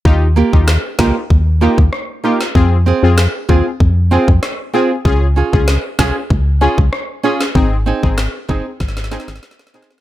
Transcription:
<<
  \new Staff \with { instrumentName = "Nylon-string guitar" } { \time 4/4 \key ees \mixolydian \tempo 4 = 96 r8 <bes f' g'>16 r8. <bes f' g'>16 r8. <bes f' g'>16 r8. <bes f' g'>16 r16 | r8 <c' f' aes'>16 r8. <c' f' aes'>16 r8. <c' f' aes'>16 r8. <c' f' aes'>16 r16 | r8 <des' f' aes'>16 r8. <des' f' aes'>16 r8. <des' f' aes'>16 r8. <des' f' aes'>16 r16 | r8 <c' ees' aes'>16 r8. <c' ees' aes'>16 r8. <c' ees' aes'>16 r8. <c' ees' aes'>16 r16 | }
  \new Staff \with { instrumentName = "Synth stab" } { \time 4/4 \key ees \mixolydian <ees' f' g'>16 r8 <ees' f' g'>16 r8 <ees' f' g'>16 r8. <ees' f' g'>16 r8. <ees' f' g'>16 r16 | <c' f' aes'>16 r8 <c' f' aes'>16 r8 <c' f' aes'>16 r8. <c' f' aes'>16 r8. <c' f' aes'>16 r16 | <des' f' aes'>16 r8 <des' f' aes'>16 r8 <des' f' aes'>16 r8. <des' f' aes'>16 r8. <des' f' aes'>16 r16 | <c' ees' aes'>16 r8 <c' ees' aes'>16 r8 <c' ees' aes'>16 r8. <c' ees' aes'>16 r8. <c' ees' aes'>16 r16 | }
  \new Staff \with { instrumentName = "FM bass" } { \clef bass \time 4/4 \key ees \mixolydian ees,8. ees,8 r16 des,16 r16 ees,8. ees,16 r4 | f,8. f,8 r16 ees,16 r16 f,8. f,16 r4 | des,8. des,8 r16 c,16 r16 des,8. des,16 r4 | aes,,8. aes,,8 r16 g,,16 r16 aes,,8. aes,,16 r4 | }
  \new DrumStaff \with { instrumentName = "Drums" } \drummode { \time 4/4 bd8. bd16 sn8 <bd sn>8 bd8. bd16 ss8. sn16 | bd4 sn8 bd8 bd8. bd16 <ss sn>4 | bd8. bd16 sn8 <bd sn>8 bd8. bd16 ss8. sn16 | bd8. bd16 <ss sn>8 bd8 <bd sn>32 sn32 sn32 sn32 sn32 sn32 sn32 sn32 sn32 sn32 sn32 sn32 sn32 sn32 sn16 | }
>>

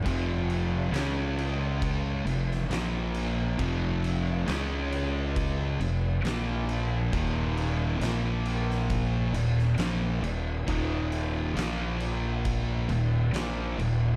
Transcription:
<<
  \new Staff \with { instrumentName = "Distorted electric guitar" } { \clef bass \time 4/4 \key bes \mixolydian \tempo 4 = 68 <f, c f>4 <des aes des'>4. <f, c>8 <bes, f bes>4 | <f, c f>4 <des aes des'>4. <f, c>8 <bes, f bes>4 | <ees, bes, ees>4 <bes, f bes>4. <ees, bes,>8 <bes, f bes>8 <ees, bes,>8 | <ees, bes, ees>4 <bes, f bes>4. <ees, bes,>8 <bes, f bes>8 <ees, bes,>8 | }
  \new Staff \with { instrumentName = "Distorted electric guitar" } { \clef bass \time 4/4 \key bes \mixolydian <f, c f>4 <des aes des'>4. <f, c>8 <bes, f bes>4 | <f, c f>4 <des aes des'>4. <f, c>8 <bes, f bes>4 | <ees, bes, ees>4 <bes, f bes>4. <ees, bes,>8 <bes, f bes>8 <ees, bes,>8 | <ees, bes, ees>4 <bes, f bes>4. <ees, bes,>8 <bes, f bes>8 <ees, bes,>8 | }
  \new Staff \with { instrumentName = "Overdriven electric guitar" } { \clef bass \time 4/4 \key bes \mixolydian <f, c f>4 <des aes des'>4. <f, c>8 <bes, f bes>4 | <f, c f>4 <des aes des'>4. <f, c>8 <bes, f bes>4 | <ees, bes, ees>4 <bes, f bes>4. <ees, bes,>8 <bes, f bes>8 <ees, bes,>8 | <ees, bes, ees>4 <bes, f bes>4. <ees, bes,>8 <bes, f bes>8 <ees, bes,>8 | }
  \new Staff \with { instrumentName = "Fingered electric bass" } { \clef bass \time 4/4 \key bes \mixolydian f,,4 des,4. f,,8 bes,,4 | f,,4 des,4. f,,8 bes,,4 | ees,,4 bes,,4. ees,,8 bes,,8 ees,,8 | ees,,4 bes,,4. ees,,8 bes,,8 ees,,8 | }
  \new DrumStaff \with { instrumentName = "Drums" } \drummode { \time 4/4 <cymc bd>8 cymc8 <cymc sn>8 cymc8 <cymc bd>8 cymc16 sn16 <cymc sn>8 cymc8 | <cymc bd>8 cymc8 <cymc sn>8 cymc8 <cymc bd>8 cymc8 <cymc sn>8 cymc8 | <cymc bd>8 cymc8 <cymc sn>8 cymc16 sn16 <cymc bd>8 cymc16 sn16 <cymc sn>8 cymc8 | <cymc bd>8 cymc8 <cymc sn>8 cymc8 <cymc bd>8 cymc8 <cymc sn>8 cymc8 | }
>>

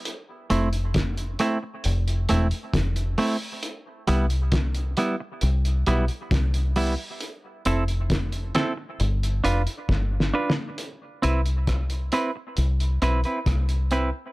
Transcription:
<<
  \new Staff \with { instrumentName = "Clean electric guitar" } { \time 4/4 \key c \major \tempo 4 = 67 r8 <a c' e'>16 r8. <a c' e'>16 r8. <a c' e'>16 r8. <a c' e'>16 r16 | r8 <g b e'>16 r8. <g b e'>16 r8. <g b e'>16 r8. <g b e'>16 r16 | r8 <c' e' a'>16 r8. <c' e' a'>16 r8. <d' f' b'>16 r8. <d' f' b'>16 r16 | r8 <c' e' b'>16 r8. <c' e' b'>16 r8. <c' e' b'>16 <c' e' b'>16 r8 <c' e' b'>16 r16 | }
  \new Staff \with { instrumentName = "Fingered electric bass" } { \clef bass \time 4/4 \key c \major r8 f,,4 r8 f,,8 e,,16 r16 f,,8 r8 | r8 c,4 r8 c,8 b,,16 r16 c,8. r16 | r8 f,,4 r8 g,,8 f,,16 r16 g,,8 r8 | r8 c,4 r8 c,8 b,,16 r16 c,8. r16 | }
  \new DrumStaff \with { instrumentName = "Drums" } \drummode { \time 4/4 hh8 hh16 hh16 <hh bd sn>16 hh16 hh8 hh16 hh16 hh16 hh16 <hh bd sn>16 hh16 hho8 | hh8 hh16 hh16 <hh bd sn>16 hh16 hh8 hh16 hh16 hh16 hh16 <hh bd sn>16 hh16 hho8 | hh8 hh16 hh16 <hh bd sn>16 hh16 <hh sn>8 hh16 hh16 hh16 hh16 \tuplet 3/2 { <bd sn>8 sn8 sn8 } | hh8 hh16 hh16 <hh bd ss>16 hh16 hh8 hh16 hh16 hh16 hh16 <hh bd ss>16 hh16 hh8 | }
>>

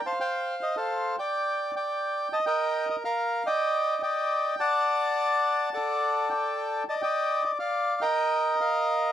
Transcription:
\new Staff \with { instrumentName = "Bandoneon" } { \time 4/4 \key ees \lydian \tempo 4 = 105 << { a''16 g''8. ees''16 f''8. g''4 g''4 | a''16 g''8. ees''16 f''8. g''4 g''4 | a''2 fis''4 g''4 | a''16 g''8. ees''16 f''8. g''4 f''4 | } \\ { <c'' f''>16 c''4 <a' c''>8. d''4 d''4 | ees''16 <bes' ees''>4 bes'8. <d'' ees''>4 <d'' ees''>4 | <d'' fis''>2 <a' d''>4 d''4 | <d'' ees''>16 <d'' ees''>4 d''8. <bes' ees''>4 bes'4 | } >> }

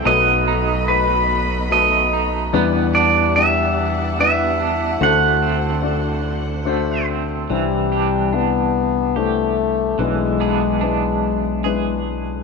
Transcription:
<<
  \new Staff \with { instrumentName = "Pedal steel guitar" } { \time 3/4 \key c \lydian \tempo 4 = 72 dis''4 b'4 dis''8. r16 | r8 d''8 e''4 e''4 | fis''2~ fis''8 r8 | r2. |
r2. | }
  \new Staff \with { instrumentName = "String section" } { \time 3/4 \key c \lydian << { b''2. | fis''2.~ | fis''2. | r2. |
r2. | } \\ { <b fis' a' dis''>2. | <e e' g' d''>2. | <d d' c''>2. | r2. |
r2. | } >> }
  \new Staff \with { instrumentName = "Clean electric guitar" } { \time 3/4 \key c \lydian fis8 dis'4. a8 dis'8 | b8 d'4. b8 d'8 | a8 c'4. a8 c'8 | e8 <d' g'>8 d'4 g'4 |
e8 <b d' gis'>8 d'4 gis'4 | }
  \new Staff \with { instrumentName = "Grand piano" } { \time 3/4 \key c \lydian <a dis' fis' b'>8 r8 <a dis' fis' b'>8 r8 <a dis' fis' b'>8 r8 | <g d' e' b'>8 r8 <g d' e' g'>8 r8 <g d' e' b'>8 r8 | <a d' fis' c''>8 r8 <a d' fis' d''>8 r8 <a d' fis' c''>8 r8 | <g d' e' c''>8 r8 <g d' e' d''>8 r8 <g d' e' c''>8 r8 |
<gis d' e' b'>8 r8 <gis d' e' b'>8 r8 <gis d' e' b'>8 r8 | }
  \new Staff \with { instrumentName = "Grand piano" } { \clef bass \time 3/4 \key c \lydian <b,, b,>2. | <e, e>2. | <d, d>2. | <c, c>2. |
<b,, b,>2. | }
  \new Staff \with { instrumentName = "French horn" } { \clef bass \time 3/4 \key c \lydian r2. | r2. | r2. | g4 b4 a4 |
gis2~ gis8 r8 | }
  \new Staff \with { instrumentName = "Fingered electric bass" } { \clef bass \time 3/4 \key c \lydian b,,2. | e,2. | d,2. | c,2. |
b,,2. | }
>>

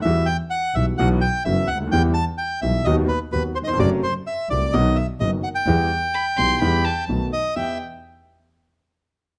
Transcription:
<<
  \new Staff \with { instrumentName = "Violin" } { \time 4/4 \key e \minor \tempo 4 = 128 r1 | r1 | r1 | r4 b''8 c'''8 b''8 a''8. r8. |
g''8 r2. r8 | }
  \new Staff \with { instrumentName = "Bandoneon" } { \time 4/4 \key e \minor e''8 g''8 fis''8 e''8 fis''8 g''8 e''8 fis''8 | g''8 a''8 g''8 e''8 dis''8 b'8 b'8 c''32 dis''32 c''16 | d''8 c''8 e''8 d''8 dis''8 e''8 dis''8 fis''16 g''16~ | g''2. r8 dis''8 |
e''8 r2. r8 | }
  \new Staff \with { instrumentName = "Grand piano" } { \clef bass \time 4/4 \key e \minor <e, e g b fis'>8 r4 <b,, b, e g b fis'>8 <b,, b, e fis b fis'>8 r8 <fis,, fis, e fis b fis'>8 r32 cis,32 d,32 dis,32 | <e, e g b g'>8 r4 <b,, b, e g b g'>8 <dis, dis fis b fis'>8 r8 <dis, dis fis b fis'>8 r32 dis,32 e,32 f,32 | <fis, c fis a fis'>8 r4 <c, c fis a fis'>8 <b,, b, dis fis b fis'>8 r8 <fis,, fis, dis fis b fis'>8 r8 | <e, e g b g'>8 r4 <b,, b, e g b g'>8 <e, e g b g'>8 r8 <b,, b, dis a b fis'>8 r8 |
<e, b e' g'>8 r2. r8 | }
  \new Staff \with { instrumentName = "Double bass" } { \clef bass \time 4/4 \key e \minor e,8 r4 b,,8 b,,8 r8 fis,,8 d,8 | e,8 r4 b,,8 dis,8 r8 dis,8 r8 | fis,,8 r4 c,8 b,,8 r8 fis,,8 r8 | e,8 r4 b,,8 e,8 r8 b,,8 r8 |
e,8 r2. r8 | }
>>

